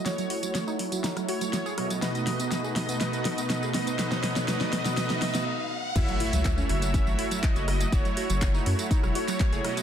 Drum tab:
CC |----------------|----------------|----------------|x---------------|
HH |xxoxx-oxxxoxx-ox|xxoxx-oxxxoxx-ox|xxoxx-oxxxox----|xxoxx-oxx-oxxxox|
TB |xx-xxx-xxx-xxx-x|xx-xxx-xxx-xxx-x|xx-xxx-xxx-x----|xx-xxx-xxx-xxx-x|
CP |----------------|----------------|----------------|----x-------x---|
SD |o---o---or--o-r-|o-o-o-o-o-o-o-o-|oooooooooooo----|--------------r-|
BD |----------------|----------------|----------------|o---o---o---o---|

CC |----------------|
HH |xxoxx-oxx-oxxxox|
TB |xx-xxx-xxx-xxx-x|
CP |----x------xx---|
SD |---------r----r-|
BD |o---o---o---o---|